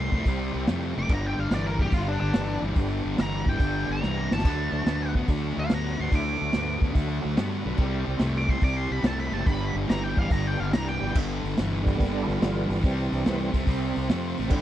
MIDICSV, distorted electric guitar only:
0, 0, Header, 1, 2, 480
1, 0, Start_track
1, 0, Key_signature, 1, "major"
1, 0, Tempo, 419287
1, 1262, Time_signature, 4, 2, 24, 8
1, 16731, End_track
2, 0, Start_track
2, 0, Title_t, "Distorted electric guitar"
2, 0, Program_c, 0, 30
2, 0, Note_on_c, 0, 48, 79
2, 0, Note_on_c, 0, 57, 96
2, 119, Note_off_c, 0, 48, 0
2, 121, Note_off_c, 0, 57, 0
2, 155, Note_on_c, 0, 48, 73
2, 163, Note_on_c, 0, 57, 79
2, 292, Note_off_c, 0, 48, 0
2, 296, Note_off_c, 0, 57, 0
2, 313, Note_on_c, 0, 48, 88
2, 317, Note_on_c, 0, 55, 97
2, 757, Note_off_c, 0, 48, 0
2, 759, Note_off_c, 0, 55, 0
2, 790, Note_on_c, 0, 48, 88
2, 792, Note_on_c, 0, 57, 88
2, 1078, Note_off_c, 0, 48, 0
2, 1079, Note_off_c, 0, 57, 0
2, 1109, Note_on_c, 0, 48, 73
2, 1120, Note_on_c, 0, 57, 80
2, 1247, Note_off_c, 0, 48, 0
2, 1252, Note_off_c, 0, 57, 0
2, 1258, Note_on_c, 0, 43, 73
2, 1261, Note_on_c, 0, 50, 90
2, 1707, Note_off_c, 0, 43, 0
2, 1708, Note_off_c, 0, 50, 0
2, 1734, Note_on_c, 0, 43, 81
2, 1738, Note_on_c, 0, 52, 105
2, 2028, Note_off_c, 0, 43, 0
2, 2030, Note_off_c, 0, 52, 0
2, 2067, Note_on_c, 0, 43, 76
2, 2072, Note_on_c, 0, 52, 81
2, 2204, Note_off_c, 0, 43, 0
2, 2206, Note_off_c, 0, 52, 0
2, 2222, Note_on_c, 0, 43, 79
2, 2224, Note_on_c, 0, 50, 90
2, 2667, Note_off_c, 0, 43, 0
2, 2668, Note_off_c, 0, 50, 0
2, 2686, Note_on_c, 0, 43, 88
2, 2696, Note_on_c, 0, 52, 87
2, 2983, Note_off_c, 0, 43, 0
2, 2988, Note_off_c, 0, 52, 0
2, 3020, Note_on_c, 0, 43, 62
2, 3021, Note_on_c, 0, 52, 82
2, 3159, Note_off_c, 0, 43, 0
2, 3159, Note_off_c, 0, 52, 0
2, 3171, Note_on_c, 0, 43, 70
2, 3179, Note_on_c, 0, 50, 84
2, 3620, Note_off_c, 0, 43, 0
2, 3624, Note_off_c, 0, 50, 0
2, 3647, Note_on_c, 0, 43, 74
2, 3652, Note_on_c, 0, 52, 91
2, 3942, Note_off_c, 0, 43, 0
2, 3944, Note_off_c, 0, 52, 0
2, 3988, Note_on_c, 0, 43, 71
2, 3989, Note_on_c, 0, 52, 80
2, 4116, Note_off_c, 0, 43, 0
2, 4122, Note_off_c, 0, 52, 0
2, 4129, Note_on_c, 0, 43, 78
2, 4138, Note_on_c, 0, 50, 81
2, 4578, Note_off_c, 0, 43, 0
2, 4582, Note_off_c, 0, 50, 0
2, 4604, Note_on_c, 0, 43, 70
2, 4607, Note_on_c, 0, 52, 89
2, 4899, Note_off_c, 0, 43, 0
2, 4900, Note_off_c, 0, 52, 0
2, 4938, Note_on_c, 0, 43, 68
2, 4944, Note_on_c, 0, 52, 82
2, 5075, Note_off_c, 0, 43, 0
2, 5078, Note_off_c, 0, 52, 0
2, 5093, Note_on_c, 0, 50, 74
2, 5103, Note_on_c, 0, 57, 83
2, 5539, Note_off_c, 0, 50, 0
2, 5544, Note_off_c, 0, 57, 0
2, 5571, Note_on_c, 0, 50, 81
2, 5577, Note_on_c, 0, 59, 88
2, 5862, Note_off_c, 0, 50, 0
2, 5865, Note_off_c, 0, 59, 0
2, 5909, Note_on_c, 0, 50, 64
2, 5912, Note_on_c, 0, 59, 89
2, 6040, Note_off_c, 0, 50, 0
2, 6041, Note_off_c, 0, 59, 0
2, 6065, Note_on_c, 0, 50, 91
2, 6073, Note_on_c, 0, 57, 101
2, 6505, Note_off_c, 0, 50, 0
2, 6509, Note_off_c, 0, 57, 0
2, 6538, Note_on_c, 0, 50, 95
2, 6538, Note_on_c, 0, 59, 90
2, 6825, Note_off_c, 0, 50, 0
2, 6825, Note_off_c, 0, 59, 0
2, 6866, Note_on_c, 0, 50, 65
2, 6869, Note_on_c, 0, 59, 73
2, 6994, Note_off_c, 0, 50, 0
2, 6999, Note_off_c, 0, 59, 0
2, 7008, Note_on_c, 0, 50, 82
2, 7014, Note_on_c, 0, 57, 79
2, 7456, Note_off_c, 0, 50, 0
2, 7459, Note_off_c, 0, 57, 0
2, 7491, Note_on_c, 0, 50, 83
2, 7496, Note_on_c, 0, 59, 98
2, 7782, Note_off_c, 0, 50, 0
2, 7784, Note_off_c, 0, 59, 0
2, 7819, Note_on_c, 0, 50, 69
2, 7823, Note_on_c, 0, 59, 88
2, 7947, Note_off_c, 0, 50, 0
2, 7957, Note_off_c, 0, 59, 0
2, 7961, Note_on_c, 0, 50, 80
2, 7963, Note_on_c, 0, 57, 98
2, 8413, Note_off_c, 0, 50, 0
2, 8414, Note_off_c, 0, 57, 0
2, 8435, Note_on_c, 0, 50, 82
2, 8435, Note_on_c, 0, 59, 88
2, 8734, Note_off_c, 0, 50, 0
2, 8734, Note_off_c, 0, 59, 0
2, 8756, Note_on_c, 0, 50, 74
2, 8764, Note_on_c, 0, 59, 79
2, 8904, Note_off_c, 0, 50, 0
2, 8906, Note_off_c, 0, 59, 0
2, 8908, Note_on_c, 0, 48, 74
2, 8910, Note_on_c, 0, 55, 88
2, 9368, Note_off_c, 0, 48, 0
2, 9368, Note_off_c, 0, 55, 0
2, 9394, Note_on_c, 0, 57, 93
2, 9395, Note_on_c, 0, 48, 84
2, 9694, Note_off_c, 0, 57, 0
2, 9695, Note_off_c, 0, 48, 0
2, 9715, Note_on_c, 0, 48, 77
2, 9723, Note_on_c, 0, 57, 83
2, 9864, Note_off_c, 0, 48, 0
2, 9868, Note_off_c, 0, 57, 0
2, 9876, Note_on_c, 0, 48, 86
2, 9889, Note_on_c, 0, 55, 89
2, 10333, Note_off_c, 0, 48, 0
2, 10339, Note_off_c, 0, 55, 0
2, 10367, Note_on_c, 0, 48, 83
2, 10373, Note_on_c, 0, 57, 92
2, 10662, Note_off_c, 0, 48, 0
2, 10665, Note_off_c, 0, 57, 0
2, 10674, Note_on_c, 0, 48, 71
2, 10680, Note_on_c, 0, 57, 93
2, 10825, Note_off_c, 0, 48, 0
2, 10826, Note_on_c, 0, 43, 85
2, 10828, Note_off_c, 0, 57, 0
2, 10839, Note_on_c, 0, 50, 97
2, 11289, Note_off_c, 0, 43, 0
2, 11295, Note_off_c, 0, 50, 0
2, 11305, Note_on_c, 0, 43, 88
2, 11309, Note_on_c, 0, 52, 101
2, 11612, Note_off_c, 0, 43, 0
2, 11614, Note_off_c, 0, 52, 0
2, 11634, Note_on_c, 0, 43, 70
2, 11641, Note_on_c, 0, 52, 78
2, 11781, Note_off_c, 0, 43, 0
2, 11789, Note_off_c, 0, 52, 0
2, 11795, Note_on_c, 0, 43, 74
2, 11803, Note_on_c, 0, 50, 88
2, 12255, Note_off_c, 0, 43, 0
2, 12259, Note_off_c, 0, 50, 0
2, 12288, Note_on_c, 0, 43, 83
2, 12291, Note_on_c, 0, 52, 87
2, 12585, Note_off_c, 0, 43, 0
2, 12587, Note_off_c, 0, 52, 0
2, 12617, Note_on_c, 0, 43, 68
2, 12625, Note_on_c, 0, 52, 77
2, 12759, Note_off_c, 0, 43, 0
2, 12763, Note_off_c, 0, 52, 0
2, 12785, Note_on_c, 0, 43, 69
2, 12794, Note_on_c, 0, 50, 75
2, 13231, Note_off_c, 0, 43, 0
2, 13236, Note_off_c, 0, 50, 0
2, 13260, Note_on_c, 0, 43, 84
2, 13267, Note_on_c, 0, 52, 81
2, 13553, Note_off_c, 0, 43, 0
2, 13556, Note_off_c, 0, 52, 0
2, 13585, Note_on_c, 0, 43, 70
2, 13591, Note_on_c, 0, 52, 81
2, 13724, Note_off_c, 0, 43, 0
2, 13727, Note_off_c, 0, 52, 0
2, 13747, Note_on_c, 0, 43, 82
2, 13751, Note_on_c, 0, 50, 94
2, 14194, Note_off_c, 0, 43, 0
2, 14196, Note_off_c, 0, 50, 0
2, 14215, Note_on_c, 0, 43, 78
2, 14224, Note_on_c, 0, 52, 85
2, 14512, Note_off_c, 0, 43, 0
2, 14516, Note_off_c, 0, 52, 0
2, 14542, Note_on_c, 0, 43, 65
2, 14551, Note_on_c, 0, 52, 80
2, 14684, Note_off_c, 0, 43, 0
2, 14689, Note_off_c, 0, 52, 0
2, 14712, Note_on_c, 0, 48, 67
2, 14716, Note_on_c, 0, 55, 70
2, 15157, Note_off_c, 0, 48, 0
2, 15159, Note_off_c, 0, 55, 0
2, 15180, Note_on_c, 0, 48, 76
2, 15180, Note_on_c, 0, 57, 81
2, 15475, Note_off_c, 0, 48, 0
2, 15475, Note_off_c, 0, 57, 0
2, 15494, Note_on_c, 0, 48, 66
2, 15498, Note_on_c, 0, 57, 77
2, 15641, Note_off_c, 0, 48, 0
2, 15643, Note_off_c, 0, 57, 0
2, 15653, Note_on_c, 0, 48, 82
2, 15667, Note_on_c, 0, 55, 84
2, 16108, Note_off_c, 0, 48, 0
2, 16115, Note_off_c, 0, 55, 0
2, 16130, Note_on_c, 0, 48, 81
2, 16132, Note_on_c, 0, 57, 102
2, 16430, Note_off_c, 0, 48, 0
2, 16431, Note_off_c, 0, 57, 0
2, 16463, Note_on_c, 0, 48, 75
2, 16471, Note_on_c, 0, 57, 83
2, 16606, Note_off_c, 0, 48, 0
2, 16610, Note_off_c, 0, 57, 0
2, 16620, Note_on_c, 0, 43, 72
2, 16623, Note_on_c, 0, 50, 83
2, 16731, Note_off_c, 0, 43, 0
2, 16731, Note_off_c, 0, 50, 0
2, 16731, End_track
0, 0, End_of_file